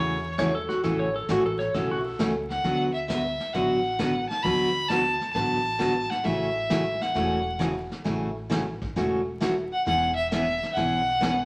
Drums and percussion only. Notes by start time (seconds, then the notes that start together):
0.38 kick, snare, hi-hat pedal
0.69 snare
0.84 brush sweep, kick, snare
1.29 kick, snare, hi-hat pedal
1.60 snare
1.74 brush sweep, kick, snare
2.19 kick, snare, hi-hat pedal
2.50 snare
2.64 brush sweep, kick, snare
3.09 kick, snare, hi-hat pedal
3.40 snare
3.54 brush sweep, kick, snare
3.99 kick, snare, hi-hat pedal
4.30 snare
4.44 brush sweep, kick, snare
4.90 kick, snare, hi-hat pedal
5.21 snare
5.35 brush sweep, kick, snare
5.80 kick, snare, hi-hat pedal
6.11 snare
6.25 brush sweep, kick, snare
6.70 kick, snare, hi-hat pedal
7.01 snare
7.15 brush sweep, kick, snare
7.60 kick, snare, hi-hat pedal
7.92 snare
8.05 brush sweep, kick, snare
8.51 kick, snare, hi-hat pedal
8.82 kick, snare
8.96 brush sweep, kick, snare
9.41 kick, snare, hi-hat pedal
9.87 brush sweep, kick, snare
10.32 kick, snare, hi-hat pedal
10.63 snare
10.77 brush sweep, kick, snare
11.22 kick, snare, hi-hat pedal